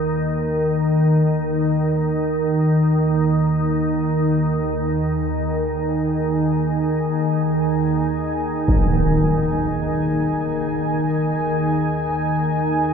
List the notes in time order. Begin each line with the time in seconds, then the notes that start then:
Already playing: D#2 D#3 D#4 A#4 A#5
3.72 G#5
8.68 impact